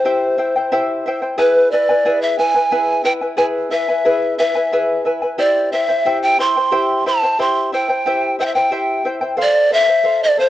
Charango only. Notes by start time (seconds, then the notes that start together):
0.05 E4 G4 C5 E5 G5
0.38 E4 C5 E5 G5
0.56 E4 C5 G5
0.72 E4 G4 C5 E5 G5
1.06 E4 C5 E5 G5
1.22 E4 C5 G5
1.38 E4 G#4 B4 E5 G#5
1.72 E4 B4 E5 G#5
1.89 E4 B4 G#5
2.05 E4 G#4 B4 E5 G#5
2.39 E4 B4 E5 G#5
2.55 E4 B4 G#5
2.71 E4 G#4 B4 E5 G#5
3.04 E4 B4 E5 G#5
3.21 E4 B4 G#5
3.37 E4 G#4 B4 E5 G#5
3.70 E4 B4 E5 G#5
3.88 E4 B4 G#5
4.05 E4 G#4 B4 E5 G#5
4.38 E4 B4 E5 G#5
4.55 E4 B4 G#5
4.72 E4 G#4 B4 E5 G#5
5.05 E4 B4 E5 G#5
5.22 E4 B4 G#5
5.38 E4 G4 C5 E5 G5
5.73 E4 C5 E5 G5
5.88 E4 C5 G5
6.05 E4 G4 C5 E5 G5
6.39 E4 C5 E5 G5
6.57 E4 C5 G5
6.72 E4 G4 C5 E5 G5
7.06 E4 C5 E5 G5
7.23 E4 C5 G5
7.39 E4 G4 C5 E5 G5
7.72 E4 C5 E5 G5
7.89 E4 C5 G5
8.06 E4 G4 C5 E5 G5
8.39 E4 C5 E5 G5
8.55 E4 C5 G5
8.71 E4 G4 C5 E5 G5
9.05 E4 C5 E5 G5
9.21 E4 C5 G5
9.37 A4 C5 F5
9.71 A4 C5 F5
9.87 C5 F5
10.04 A4 C5 F5
10.37 A4 C5 F5